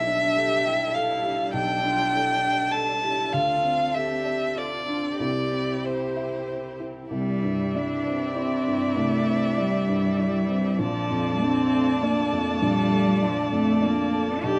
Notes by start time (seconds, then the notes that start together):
Already playing: B1 G3 D4 A4 E5
0.07 D4
0.37 G4 A4
0.65 E4 G5
0.94 A4 F5
1.23 G4
1.53 B1 D4 G5
1.83 D4 F4
2.13 E4 A4
2.43 D4 G5
2.72 D4 A4 A5
3.02 E4 G4
3.32 D2 C4 F4 F5
3.64 C4
3.94 G4 A4 E5
4.25 D5
4.55 F4 A4 D5
4.87 D4 F4
5.19 C2 E4 G4 D5
5.52 C4
5.85 C5
6.16 E5
6.48 C5
6.80 E4
7.11 C2 G3 D4 E4 G4 D5 E5
7.43 G2
7.75 D4 E4 D5
8.06 C4
8.36 C4 E4 D5
8.67 G2
8.96 C2 A3
9.27 C4
9.57 G3 E4 D5
9.88 G2
10.19 E4 D5
10.48 C4
10.79 A#1 F3 D4 F4 A4 D5 A5
11.10 F2
11.41 C4 D4 D5
11.72 A3
12.02 A#3 D4 D5
12.32 F2
12.62 A#1 G3
12.92 A3
13.22 F3 D4 D5
13.52 F2 A3
13.81 A#3 D4 D5
14.12 A4
14.43 B1 D4 G4 A4 D5 A5